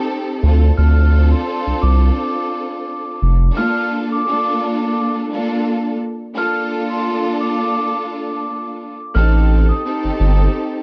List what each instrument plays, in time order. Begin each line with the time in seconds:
Already playing: string section C4 D#4 G4 A4
0.43 sub bass D2, string section C4 D4 F4 A4
0.76 sub bass D2, string section C4 D4 F4 A4, vibraphone F6
1.32 vibraphone C6
1.67 sub bass C2
1.82 sub bass C2, vibraphone D6
3.22 sub bass F1
3.55 string section A#3 D4 F4 A4, vibraphone F6
4.12 vibraphone D6
4.27 string section A#3 D4 F4 A4
5.32 string section A#3 D4 F4 A4
6.35 string section A#3 D4 F4 A4, vibraphone F6
6.90 vibraphone C6
7.41 vibraphone D6
9.15 sub bass A1, string section C4 D#4 G4 A4, vibraphone F6
9.69 vibraphone D#6
9.85 string section C4 D#4 G4 A4
10.04 sub bass G1
10.20 sub bass G1